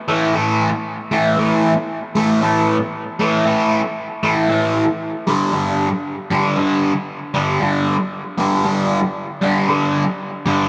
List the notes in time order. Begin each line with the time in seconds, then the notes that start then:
0.08 A2 E3 A3
0.34 A2 E3 A3
1.11 A2 E3 A3
1.38 A2 E3 A3
2.15 A2 E3 A3
2.42 A2 E3 A3
3.20 A2 E3 A3
3.45 A2 E3 A3
4.23 A2 E3 A3
4.49 A2 E3 A3
5.27 G2 D3 G3
5.53 G2 D3 G3
6.30 G2 D3 G3
6.57 G2 D3 G3
7.34 G2 D3 G3
7.60 G2 D3 G3
8.38 G2 D3 G3
8.65 G2 D3 G3
9.42 G2 D3 G3
9.68 G2 D3 G3
10.46 G2 D3 G3